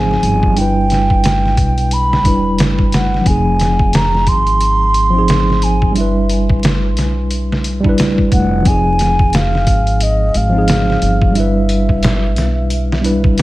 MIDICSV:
0, 0, Header, 1, 5, 480
1, 0, Start_track
1, 0, Tempo, 674157
1, 401, Time_signature, 4, 2, 24, 8
1, 9556, End_track
2, 0, Start_track
2, 0, Title_t, "Flute"
2, 0, Program_c, 0, 73
2, 0, Note_on_c, 0, 80, 102
2, 412, Note_on_c, 0, 79, 108
2, 423, Note_off_c, 0, 80, 0
2, 1376, Note_on_c, 0, 83, 114
2, 1387, Note_off_c, 0, 79, 0
2, 1848, Note_off_c, 0, 83, 0
2, 2093, Note_on_c, 0, 78, 88
2, 2329, Note_on_c, 0, 80, 95
2, 2340, Note_off_c, 0, 78, 0
2, 2813, Note_on_c, 0, 82, 107
2, 2824, Note_off_c, 0, 80, 0
2, 3050, Note_on_c, 0, 84, 127
2, 3061, Note_off_c, 0, 82, 0
2, 4014, Note_on_c, 0, 80, 96
2, 4024, Note_off_c, 0, 84, 0
2, 4245, Note_off_c, 0, 80, 0
2, 4249, Note_on_c, 0, 76, 80
2, 4697, Note_off_c, 0, 76, 0
2, 5931, Note_on_c, 0, 78, 106
2, 6174, Note_on_c, 0, 80, 105
2, 6185, Note_off_c, 0, 78, 0
2, 6657, Note_on_c, 0, 77, 107
2, 6668, Note_off_c, 0, 80, 0
2, 7140, Note_on_c, 0, 75, 94
2, 7151, Note_off_c, 0, 77, 0
2, 7383, Note_on_c, 0, 77, 105
2, 7394, Note_off_c, 0, 75, 0
2, 8100, Note_on_c, 0, 76, 91
2, 8111, Note_off_c, 0, 77, 0
2, 9530, Note_off_c, 0, 76, 0
2, 9556, End_track
3, 0, Start_track
3, 0, Title_t, "Tine electric piano"
3, 0, Program_c, 1, 4
3, 0, Control_c, 1, 64, 127
3, 0, Note_on_c, 1, 53, 91
3, 0, Note_on_c, 1, 60, 87
3, 0, Note_on_c, 1, 63, 84
3, 0, Note_on_c, 1, 68, 107
3, 363, Note_off_c, 1, 53, 0
3, 372, Note_off_c, 1, 60, 0
3, 375, Note_on_c, 1, 55, 74
3, 383, Note_off_c, 1, 63, 0
3, 392, Note_off_c, 1, 68, 0
3, 394, Note_on_c, 1, 62, 67
3, 411, Control_c, 1, 64, 0
3, 414, Note_on_c, 1, 64, 70
3, 434, Note_on_c, 1, 71, 77
3, 538, Control_c, 1, 64, 127
3, 1569, Note_off_c, 1, 55, 0
3, 1578, Note_off_c, 1, 62, 0
3, 1588, Note_off_c, 1, 64, 0
3, 1590, Note_on_c, 1, 55, 68
3, 1598, Note_off_c, 1, 71, 0
3, 1599, Note_on_c, 1, 62, 66
3, 1611, Note_on_c, 1, 64, 66
3, 1620, Note_on_c, 1, 71, 75
3, 1671, Note_off_c, 1, 55, 0
3, 1675, Note_off_c, 1, 62, 0
3, 1681, Note_off_c, 1, 64, 0
3, 1686, Note_off_c, 1, 71, 0
3, 2287, Note_on_c, 1, 53, 72
3, 2308, Note_on_c, 1, 60, 68
3, 2329, Control_c, 1, 64, 0
3, 2329, Note_on_c, 1, 63, 64
3, 2349, Note_on_c, 1, 68, 82
3, 2437, Control_c, 1, 64, 127
3, 3612, Note_off_c, 1, 53, 0
3, 3623, Note_off_c, 1, 60, 0
3, 3632, Note_on_c, 1, 53, 90
3, 3633, Note_off_c, 1, 63, 0
3, 3644, Note_off_c, 1, 68, 0
3, 3654, Note_on_c, 1, 60, 84
3, 3672, Note_on_c, 1, 63, 85
3, 3692, Note_on_c, 1, 68, 102
3, 4202, Note_off_c, 1, 53, 0
3, 4213, Note_off_c, 1, 60, 0
3, 4214, Note_on_c, 1, 55, 73
3, 4222, Note_off_c, 1, 63, 0
3, 4232, Note_off_c, 1, 68, 0
3, 4235, Note_on_c, 1, 62, 62
3, 4248, Control_c, 1, 64, 0
3, 4255, Note_on_c, 1, 64, 64
3, 4276, Note_on_c, 1, 71, 84
3, 4385, Control_c, 1, 64, 127
3, 5536, Note_off_c, 1, 55, 0
3, 5546, Note_off_c, 1, 62, 0
3, 5555, Note_on_c, 1, 55, 94
3, 5556, Note_off_c, 1, 64, 0
3, 5567, Note_off_c, 1, 71, 0
3, 5575, Note_on_c, 1, 62, 87
3, 5597, Note_on_c, 1, 64, 83
3, 5617, Note_on_c, 1, 71, 106
3, 6123, Note_off_c, 1, 55, 0
3, 6133, Note_off_c, 1, 62, 0
3, 6134, Note_on_c, 1, 53, 73
3, 6144, Note_off_c, 1, 64, 0
3, 6154, Note_off_c, 1, 71, 0
3, 6154, Note_on_c, 1, 60, 67
3, 6169, Control_c, 1, 64, 0
3, 6174, Note_on_c, 1, 63, 68
3, 6194, Note_on_c, 1, 68, 82
3, 6276, Control_c, 1, 64, 127
3, 7456, Note_off_c, 1, 53, 0
3, 7466, Note_off_c, 1, 60, 0
3, 7474, Note_on_c, 1, 53, 88
3, 7476, Note_off_c, 1, 63, 0
3, 7486, Note_off_c, 1, 68, 0
3, 7493, Note_on_c, 1, 60, 85
3, 7512, Note_on_c, 1, 63, 83
3, 7534, Note_on_c, 1, 68, 97
3, 8043, Note_off_c, 1, 53, 0
3, 8052, Note_off_c, 1, 60, 0
3, 8055, Note_on_c, 1, 55, 72
3, 8062, Note_off_c, 1, 63, 0
3, 8073, Note_off_c, 1, 68, 0
3, 8074, Note_on_c, 1, 62, 64
3, 8091, Control_c, 1, 64, 0
3, 8095, Note_on_c, 1, 64, 65
3, 8115, Note_on_c, 1, 71, 85
3, 8223, Control_c, 1, 64, 127
3, 9248, Note_off_c, 1, 55, 0
3, 9258, Note_off_c, 1, 62, 0
3, 9267, Note_on_c, 1, 55, 74
3, 9269, Note_off_c, 1, 64, 0
3, 9277, Note_on_c, 1, 62, 67
3, 9279, Note_off_c, 1, 71, 0
3, 9287, Note_on_c, 1, 64, 64
3, 9297, Note_on_c, 1, 71, 80
3, 9349, Note_off_c, 1, 55, 0
3, 9354, Note_off_c, 1, 62, 0
3, 9359, Note_off_c, 1, 64, 0
3, 9364, Note_off_c, 1, 71, 0
3, 9556, End_track
4, 0, Start_track
4, 0, Title_t, "Upright bass"
4, 0, Program_c, 2, 32
4, 0, Note_on_c, 2, 32, 75
4, 144, Note_off_c, 2, 32, 0
4, 162, Note_on_c, 2, 31, 88
4, 1122, Note_off_c, 2, 31, 0
4, 1122, Note_on_c, 2, 35, 94
4, 1604, Note_off_c, 2, 35, 0
4, 1604, Note_on_c, 2, 28, 72
4, 1845, Note_off_c, 2, 28, 0
4, 1845, Note_on_c, 2, 31, 77
4, 2304, Note_off_c, 2, 31, 0
4, 2321, Note_on_c, 2, 29, 86
4, 3042, Note_off_c, 2, 29, 0
4, 3042, Note_on_c, 2, 32, 90
4, 4245, Note_off_c, 2, 32, 0
4, 4245, Note_on_c, 2, 31, 95
4, 4962, Note_off_c, 2, 31, 0
4, 4962, Note_on_c, 2, 35, 89
4, 5903, Note_off_c, 2, 35, 0
4, 5923, Note_on_c, 2, 29, 79
4, 6885, Note_off_c, 2, 29, 0
4, 6885, Note_on_c, 2, 32, 94
4, 7344, Note_off_c, 2, 32, 0
4, 7368, Note_on_c, 2, 32, 77
4, 7826, Note_off_c, 2, 32, 0
4, 7845, Note_on_c, 2, 31, 87
4, 8805, Note_off_c, 2, 31, 0
4, 8805, Note_on_c, 2, 35, 88
4, 9504, Note_off_c, 2, 35, 0
4, 9556, End_track
5, 0, Start_track
5, 0, Title_t, "Drums"
5, 79, Note_on_c, 9, 38, 37
5, 150, Note_off_c, 9, 38, 0
5, 164, Note_on_c, 9, 42, 60
5, 235, Note_off_c, 9, 42, 0
5, 305, Note_on_c, 9, 36, 85
5, 377, Note_off_c, 9, 36, 0
5, 403, Note_on_c, 9, 42, 89
5, 474, Note_off_c, 9, 42, 0
5, 640, Note_on_c, 9, 42, 56
5, 653, Note_on_c, 9, 38, 42
5, 712, Note_off_c, 9, 42, 0
5, 724, Note_off_c, 9, 38, 0
5, 784, Note_on_c, 9, 36, 79
5, 855, Note_off_c, 9, 36, 0
5, 880, Note_on_c, 9, 42, 76
5, 893, Note_on_c, 9, 38, 98
5, 952, Note_off_c, 9, 42, 0
5, 964, Note_off_c, 9, 38, 0
5, 1036, Note_on_c, 9, 38, 30
5, 1108, Note_off_c, 9, 38, 0
5, 1121, Note_on_c, 9, 36, 79
5, 1121, Note_on_c, 9, 42, 57
5, 1192, Note_off_c, 9, 42, 0
5, 1193, Note_off_c, 9, 36, 0
5, 1266, Note_on_c, 9, 42, 37
5, 1337, Note_off_c, 9, 42, 0
5, 1362, Note_on_c, 9, 42, 82
5, 1433, Note_off_c, 9, 42, 0
5, 1517, Note_on_c, 9, 38, 52
5, 1589, Note_off_c, 9, 38, 0
5, 1601, Note_on_c, 9, 36, 95
5, 1602, Note_on_c, 9, 42, 79
5, 1672, Note_off_c, 9, 36, 0
5, 1673, Note_off_c, 9, 42, 0
5, 1840, Note_on_c, 9, 42, 81
5, 1853, Note_on_c, 9, 38, 115
5, 1911, Note_off_c, 9, 42, 0
5, 1924, Note_off_c, 9, 38, 0
5, 1983, Note_on_c, 9, 36, 90
5, 2054, Note_off_c, 9, 36, 0
5, 2082, Note_on_c, 9, 42, 70
5, 2094, Note_on_c, 9, 38, 95
5, 2153, Note_off_c, 9, 42, 0
5, 2166, Note_off_c, 9, 38, 0
5, 2237, Note_on_c, 9, 38, 31
5, 2309, Note_off_c, 9, 38, 0
5, 2320, Note_on_c, 9, 36, 108
5, 2321, Note_on_c, 9, 42, 80
5, 2391, Note_off_c, 9, 36, 0
5, 2392, Note_off_c, 9, 42, 0
5, 2560, Note_on_c, 9, 42, 61
5, 2573, Note_on_c, 9, 38, 47
5, 2631, Note_off_c, 9, 42, 0
5, 2644, Note_off_c, 9, 38, 0
5, 2701, Note_on_c, 9, 36, 90
5, 2773, Note_off_c, 9, 36, 0
5, 2799, Note_on_c, 9, 42, 83
5, 2812, Note_on_c, 9, 38, 107
5, 2870, Note_off_c, 9, 42, 0
5, 2883, Note_off_c, 9, 38, 0
5, 2953, Note_on_c, 9, 38, 34
5, 3024, Note_off_c, 9, 38, 0
5, 3037, Note_on_c, 9, 42, 63
5, 3038, Note_on_c, 9, 36, 87
5, 3108, Note_off_c, 9, 42, 0
5, 3110, Note_off_c, 9, 36, 0
5, 3180, Note_on_c, 9, 42, 42
5, 3251, Note_off_c, 9, 42, 0
5, 3279, Note_on_c, 9, 42, 86
5, 3350, Note_off_c, 9, 42, 0
5, 3519, Note_on_c, 9, 42, 69
5, 3591, Note_off_c, 9, 42, 0
5, 3760, Note_on_c, 9, 42, 82
5, 3773, Note_on_c, 9, 38, 110
5, 3831, Note_off_c, 9, 42, 0
5, 3844, Note_off_c, 9, 38, 0
5, 3917, Note_on_c, 9, 38, 38
5, 3988, Note_off_c, 9, 38, 0
5, 4001, Note_on_c, 9, 42, 63
5, 4073, Note_off_c, 9, 42, 0
5, 4143, Note_on_c, 9, 36, 88
5, 4214, Note_off_c, 9, 36, 0
5, 4240, Note_on_c, 9, 42, 87
5, 4312, Note_off_c, 9, 42, 0
5, 4481, Note_on_c, 9, 42, 64
5, 4553, Note_off_c, 9, 42, 0
5, 4624, Note_on_c, 9, 36, 92
5, 4695, Note_off_c, 9, 36, 0
5, 4721, Note_on_c, 9, 42, 80
5, 4734, Note_on_c, 9, 38, 119
5, 4792, Note_off_c, 9, 42, 0
5, 4805, Note_off_c, 9, 38, 0
5, 4962, Note_on_c, 9, 42, 61
5, 4974, Note_on_c, 9, 38, 48
5, 5033, Note_off_c, 9, 42, 0
5, 5046, Note_off_c, 9, 38, 0
5, 5202, Note_on_c, 9, 42, 79
5, 5273, Note_off_c, 9, 42, 0
5, 5357, Note_on_c, 9, 38, 52
5, 5428, Note_off_c, 9, 38, 0
5, 5442, Note_on_c, 9, 42, 72
5, 5513, Note_off_c, 9, 42, 0
5, 5585, Note_on_c, 9, 36, 86
5, 5656, Note_off_c, 9, 36, 0
5, 5681, Note_on_c, 9, 42, 84
5, 5694, Note_on_c, 9, 38, 107
5, 5752, Note_off_c, 9, 42, 0
5, 5765, Note_off_c, 9, 38, 0
5, 5825, Note_on_c, 9, 36, 86
5, 5896, Note_off_c, 9, 36, 0
5, 5921, Note_on_c, 9, 42, 65
5, 5922, Note_on_c, 9, 36, 84
5, 5992, Note_off_c, 9, 42, 0
5, 5993, Note_off_c, 9, 36, 0
5, 6162, Note_on_c, 9, 36, 100
5, 6162, Note_on_c, 9, 42, 87
5, 6233, Note_off_c, 9, 36, 0
5, 6233, Note_off_c, 9, 42, 0
5, 6402, Note_on_c, 9, 42, 67
5, 6415, Note_on_c, 9, 38, 47
5, 6473, Note_off_c, 9, 42, 0
5, 6486, Note_off_c, 9, 38, 0
5, 6546, Note_on_c, 9, 36, 88
5, 6617, Note_off_c, 9, 36, 0
5, 6643, Note_on_c, 9, 42, 86
5, 6655, Note_on_c, 9, 38, 110
5, 6714, Note_off_c, 9, 42, 0
5, 6727, Note_off_c, 9, 38, 0
5, 6799, Note_on_c, 9, 38, 35
5, 6871, Note_off_c, 9, 38, 0
5, 6883, Note_on_c, 9, 36, 88
5, 6883, Note_on_c, 9, 42, 66
5, 6954, Note_off_c, 9, 36, 0
5, 6954, Note_off_c, 9, 42, 0
5, 7026, Note_on_c, 9, 42, 43
5, 7097, Note_off_c, 9, 42, 0
5, 7123, Note_on_c, 9, 42, 85
5, 7194, Note_off_c, 9, 42, 0
5, 7365, Note_on_c, 9, 42, 69
5, 7436, Note_off_c, 9, 42, 0
5, 7603, Note_on_c, 9, 42, 85
5, 7615, Note_on_c, 9, 38, 107
5, 7674, Note_off_c, 9, 42, 0
5, 7687, Note_off_c, 9, 38, 0
5, 7760, Note_on_c, 9, 38, 37
5, 7831, Note_off_c, 9, 38, 0
5, 7845, Note_on_c, 9, 42, 63
5, 7916, Note_off_c, 9, 42, 0
5, 7986, Note_on_c, 9, 36, 92
5, 8057, Note_off_c, 9, 36, 0
5, 8084, Note_on_c, 9, 42, 88
5, 8155, Note_off_c, 9, 42, 0
5, 8322, Note_on_c, 9, 42, 62
5, 8394, Note_off_c, 9, 42, 0
5, 8465, Note_on_c, 9, 36, 89
5, 8536, Note_off_c, 9, 36, 0
5, 8563, Note_on_c, 9, 42, 86
5, 8575, Note_on_c, 9, 38, 116
5, 8634, Note_off_c, 9, 42, 0
5, 8647, Note_off_c, 9, 38, 0
5, 8803, Note_on_c, 9, 42, 63
5, 8816, Note_on_c, 9, 38, 48
5, 8875, Note_off_c, 9, 42, 0
5, 8887, Note_off_c, 9, 38, 0
5, 9045, Note_on_c, 9, 42, 82
5, 9116, Note_off_c, 9, 42, 0
5, 9202, Note_on_c, 9, 38, 53
5, 9273, Note_off_c, 9, 38, 0
5, 9288, Note_on_c, 9, 42, 73
5, 9359, Note_off_c, 9, 42, 0
5, 9427, Note_on_c, 9, 36, 97
5, 9498, Note_off_c, 9, 36, 0
5, 9523, Note_on_c, 9, 42, 75
5, 9556, Note_off_c, 9, 42, 0
5, 9556, End_track
0, 0, End_of_file